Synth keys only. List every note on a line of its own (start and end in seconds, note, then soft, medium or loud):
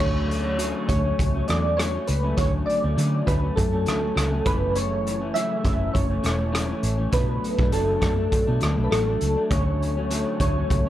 0.00 0.85 C#5 medium
0.88 1.44 C#5 medium
1.48 1.79 D5 medium
1.77 2.08 C#5 medium
2.08 2.38 B4 medium
2.37 2.51 C#5 loud
2.66 3.22 D5 loud
3.27 3.54 B4 medium
3.56 4.48 A4 medium
4.46 4.76 B4 loud
4.76 5.31 C#5 medium
5.34 5.96 E5 loud
5.94 7.16 C#5 medium
7.13 7.74 B4 medium
7.73 8.00 A4 medium
8.02 8.87 A4 medium
8.84 8.91 B4 medium
8.91 9.52 A4 medium
9.51 10.39 C#5 medium
10.40 10.89 C#5 medium